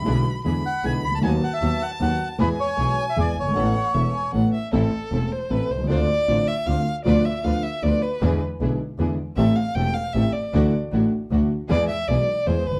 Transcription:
X:1
M:3/4
L:1/16
Q:1/4=155
K:A
V:1 name="Bandoneon"
z6 f2 g2 b a | g2 f e3 f2 f3 z | B2 c4- c e d2 c2- | c8 z4 |
[K:Am] z12 | z12 | z12 | z12 |
z12 | z12 | z12 |]
V:2 name="Violin"
b4 b8 | a12 | g12 | f4 e2 g2 f2 e2 |
[K:Am] A6 c2 B2 c2 | d6 e2 f3 z | d2 e2 f2 e2 d2 B2- | B2 z8 z2 |
e2 f2 g2 f2 e2 d2- | d2 z8 z2 | d2 e2 d4 c2 B2 |]
V:3 name="String section"
[DEG]2 z2 [DEG]2 z2 [DEG]2 z2 | [B,^DF]2 z2 [B,DF]2 z2 [B,DF]2 z2 | [B,EG]2 z2 [B,EG]2 z2 [B,EG]2 z2 | [B,CA]2 z2 [B,CA]2 z2 [B,CA]2 z2 |
[K:Am] [CEA]2 z2 [CEA]2 z2 [CEA]2 z2 | [DFc]2 z2 [DFc]2 z2 [DFc]2 z2 | [DFB]2 z2 [DFB]2 z2 [DFB]2 z2 | [DE^G]2 z2 [DEG]2 z2 [DEG]2 z2 |
[CGA]2 z2 [CGA]2 z2 [CGA]2 z2 | [DE^F]2 z2 [DEF]2 z2 [DEF]2 z2 | [B,E^G]2 z2 [B,EG]2 z2 [B,EG]2 z2 |]
V:4 name="Grand piano" clef=bass
[B,,,B,,D,G,B,E]2 z2 [E,,D,E,G,B,E]2 z2 [B,,,B,,D,G,B,E]2 z/2 =C,,/2 ^C,,/2 D,,/2 | [^D,,^D,F,B,F]2 z2 [D,,D,F,B,F]2 z2 [D,,D,F,B,F]2 z2 | [E,,E,G,B,G]2 z2 [B,,,B,,E,G,B,G]2 z2 [E,,E,G,B,G]2 z/2 F,,,/2 =G,,,/2 ^G,,,/2 | [A,,,A,,E,B,CA]2 z2 [E,,,E,,E,B,CA]2 z2 [A,,,A,,E,B,CA]2 z2 |
[K:Am] [A,,,A,,E,A,CA]2 z2 [E,,,E,,E,A,CA]2 z2 [A,,,A,,E,A,CA]2 z/2 B,,,/2 C,,/2 ^C,,/2 | [D,,D,A,CF]2 z2 [A,,,A,,D,A,CF]2 z2 [D,,D,A,CF]2 z2 | [D,,D,F,B,F]2 z2 [D,,D,F,B,F]2 z2 [D,,D,F,B,F]2 z2 | [E,,D,E,^G,B,E]2 z2 [B,,,B,,D,G,B,E]2 z2 [E,,D,E,G,B,E]2 z2 |
[A,,,A,,E,A,CG]2 z2 [E,,,E,,E,A,CG]2 z2 [A,,,A,,E,A,CG]2 z2 | [D,,D,E,A,D^F]2 z2 [A,,,A,,E,A,DF]2 z2 [D,,D,E,A,DF]2 z2 | [E,,E,^G,B,^G]2 z2 [B,,,B,,E,G,B,G]2 z2 [E,,E,G,B,G]2 z/2 ^F,,,/2 =G,,,/2 z/2 |]
V:5 name="Double bass" clef=bass
B,,,2 z2 E,,2 z2 B,,,2 C,,2 | ^D,,2 z2 D,,2 z2 D,,2 z2 | E,,2 z2 B,,,2 z2 E,,2 =G,,,2 | A,,,2 z2 E,,,2 z2 A,,,2 z2 |
[K:Am] A,,,2 z2 E,,,2 z2 A,,,2 C,,2 | D,,2 z2 A,,,2 z2 D,,2 z2 | D,,2 z2 D,,2 z2 D,,2 z2 | E,,2 z2 B,,,2 z2 E,,2 z2 |
A,,,2 z2 E,,,2 z2 A,,,2 z2 | D,,2 z2 A,,,2 z2 D,,2 z2 | E,,2 z2 B,,,2 z2 E,,2 G,,,2 |]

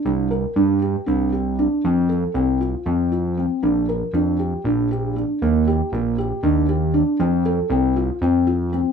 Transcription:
X:1
M:7/8
L:1/8
Q:1/4=118
K:Eblyd
V:1 name="Felt piano"
D B D G D G D | C A C F C F C | D B D G D G D | B, G B, G D G D |
C A C F C F C |]
V:2 name="Analog synth bass" clef=bass
C,,2 G,,2 C,,3 | F,,2 C,,2 F,,3 | B,,,2 F,,2 B,,,3 | E,,2 B,,,2 E,,3 |
F,,2 C,,2 F,,3 |]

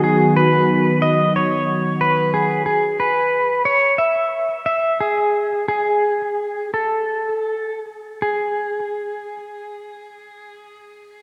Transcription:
X:1
M:4/4
L:1/8
Q:1/4=88
K:Bmix
V:1 name="Pedal steel guitar"
G B2 d c2 B G | G B2 c e2 e G- | G G3 A3 z | G8 |]
V:2 name="Analog synth pad" clef=bass
[D,F,B,F]8 | z8 | z8 | z8 |]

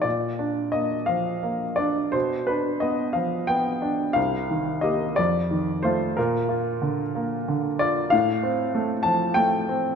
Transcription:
X:1
M:6/8
L:1/8
Q:3/8=60
K:Bb
V:1 name="Grand piano"
d2 e f2 d | c =B e f g2 | f2 e d2 c | B2 z3 d |
f3 a g2 |]
V:2 name="Grand piano"
B,, D B, F, B, D | =B,, D =B, F, B, D | C,, E, [B,G] F,, E, [A,F] | B,, F D, B, D, F |
A,, C A, F, A, C |]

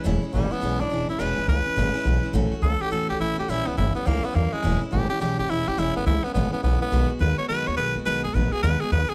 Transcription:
X:1
M:4/4
L:1/8
Q:"Swing" 1/4=210
K:E
V:1 name="Tenor saxophone"
z2 =G, B,2 =D2 E | B2 B6 | z2 A =G A G E G | E B, E B, ^A, B, A, G,- |
G, z =G G G G E G | E B, E B, B, B, B, B,- | B, z B c B c B z | B G B G B G B G |]
V:2 name="Steel-string acoustic guitar"
[E,,B,,E,G,CE] [E,G,CE] [E,G,CE] [E,G,CE] [E,,B,,E,G,CE] [E,G,CE] [E,G,CE] [E,G,CE] | [E,,B,,E,G,CE] [E,G,CE] [E,G,CE] [E,G,CE] [E,,B,,E,G,CE] [E,G,CE] [E,G,CE] [E,G,CE] | [A,,E,A,CF] [A,CF] [E,A,CF] [A,CF] [A,,E,A,CF] [A,CF] [E,A,CF] [A,CF] | [^A,,E,=G,CE] [G,CE] [E,G,CE] [G,CE] [A,,E,G,CE] [G,CE] [E,G,CE] [G,CE] |
[E,,B,,E,G,CE] [E,G,CE] [E,G,CE] [E,G,CE] [E,,B,,E,G,CE] [E,G,CE] [E,G,CE] [E,G,CE] | [E,,B,,E,G,CE] [E,G,CE] [E,G,CE] [E,G,CE] [E,,B,,E,G,CE] [E,G,CE] [E,G,CE] [E,G,CE] | [B,,D,G,B,F] [G,B,F] [D,G,B,F] [G,B,F] [B,,D,G,B,F] [G,B,F] [D,G,B,F] [G,B,F] | [B,,D,G,B,F] [G,B,F] [D,G,B,F] [G,B,F] [B,,D,G,B,F] [G,B,F] [D,G,B,F] [B,F] |]
V:3 name="Upright bass" clef=bass
E,,, z G,,, z B,,, G,,, E,,, G,,, | E,,, G,,, C,, z G,,, z B,,, z | A,,, z C,, z E,, C,, A,,, C,, | ^A,,, C,, =G,,, z C,, z E,, z |
E,,, z G,,, z B,,, G,,, E,,, G,,, | E,,, G,,, C,, z G,,, z B,,, z | B,,, z D,, z F,, D,, B,,, D,, | B,,, D,, A,,, z D,, z D,, z |]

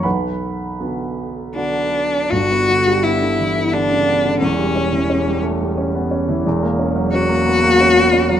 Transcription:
X:1
M:3/4
L:1/16
Q:1/4=88
K:Glyd
V:1 name="Cello"
z8 D4 | F4 E4 D4 | C6 z6 | z4 F8 |]
V:2 name="Grand piano"
[Bfb]8- [Bfb]2 z2 | z12 | z12 | z12 |]
V:3 name="Grand piano" clef=bass
B,,,4 [D,B,F]4 [D,B,F]4 | [G,,,G,,] B, D, G, B, D, E, B, D, C, B, D, | [E,,,E,,] G, C E, C G, A, G, C B, C E, | [E,,,E,,] ^A, C F, C A, B, A, C B, C F, |]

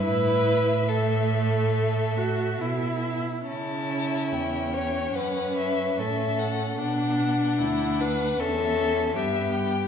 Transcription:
X:1
M:4/4
L:1/16
Q:1/4=73
K:Amix
V:1 name="Violin"
e12- e3 z | a4 g4 f2 e2 e2 f2 | f8 e4 e2 g2 |]
V:2 name="Violin"
B4 A8- A2 z2 | E6 c2 B4 A4 | D6 B2 A4 G4 |]
V:3 name="Viola"
E4 A,6 F2 E4 | C16 | D4 E2 D2 C4 B,4 |]
V:4 name="Cello" clef=bass
A,,12 B,,3 z | C,4 E,,4 F,,4 A,,4 | B,,4 D,,4 E,,4 G,,4 |]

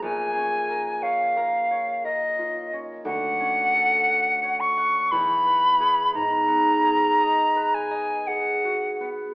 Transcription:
X:1
M:3/4
L:1/16
Q:1/4=58
K:A#phr
V:1 name="Flute"
g4 e4 d3 z | [K:G#m] f6 c'2 b4 | a6 g2 f3 z |]
V:2 name="Harp"
(3[A,,,GA]2 C2 A2 (3c2 A2 c2 (3A2 E2 C2 | [K:G#m] (3=D,,2 C2 =A2 (3f2 c2 f2 (3E,,2 B,2 [Gf]2 | (3G,,2 B,2 G2 (3d2 B2 d2 (3G2 F2 B,2 |]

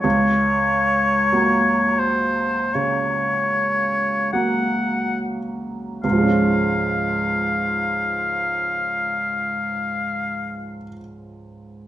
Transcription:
X:1
M:4/4
L:1/8
Q:1/4=41
K:Db
V:1 name="Oboe"
d3 c d2 g z | f8 |]
V:2 name="Grand piano" clef=bass
D,,2 [G,B,G]2 D,2 [G,B,G]2 | [D,,A,,F,A,DF]8 |]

